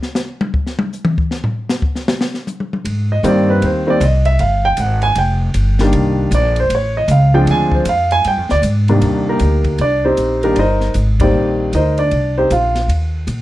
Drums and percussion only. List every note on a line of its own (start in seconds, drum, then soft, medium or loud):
0.03 snare soft
0.15 snare medium
0.15 hi-hat pedal medium
0.41 high tom medium
0.54 kick medium
0.67 snare soft
0.79 high tom medium
0.93 hi-hat pedal soft
1.05 mid tom loud
1.18 kick medium
1.31 snare medium
1.44 floor tom medium
1.69 snare medium
1.69 hi-hat pedal medium
1.82 kick medium
1.96 snare soft
2.08 snare loud
2.21 snare medium
2.34 snare soft
2.47 hi-hat pedal soft
2.47 high tom soft
2.60 high tom soft
2.73 high tom medium
2.85 ride medium
3.24 hi-hat pedal medium
3.24 ride medium
3.62 ride medium
4.01 hi-hat pedal soft
4.01 ride medium
4.25 ride soft
4.39 ride medium
4.77 hi-hat pedal medium
4.77 ride medium
5.02 ride soft
5.15 ride medium
5.54 hi-hat pedal medium
5.54 ride medium
5.79 snare medium
5.79 ride soft
5.93 ride medium
6.32 hi-hat pedal medium
6.32 ride medium
6.56 ride soft
6.70 ride medium
7.08 hi-hat pedal medium
7.08 ride medium
7.47 ride medium
7.72 kick medium
7.85 hi-hat pedal medium
7.85 ride medium
8.11 ride soft
8.24 ride medium
8.49 snare soft
8.63 hi-hat pedal medium
8.63 ride medium
8.88 ride soft
9.02 ride medium
9.39 hi-hat pedal soft
9.39 ride medium
9.64 kick medium
9.64 ride soft
9.78 ride medium
10.17 hi-hat pedal medium
10.17 ride medium
10.43 ride soft
10.56 ride medium
10.81 snare soft
10.94 hi-hat pedal medium
10.94 ride medium
11.20 kick medium
11.20 ride medium
11.73 hi-hat pedal medium
11.73 ride medium
11.98 ride soft
12.11 ride medium
12.50 hi-hat pedal medium
12.50 ride medium
12.75 snare soft
12.75 ride soft
12.89 ride medium
13.27 hi-hat pedal soft
13.27 ride medium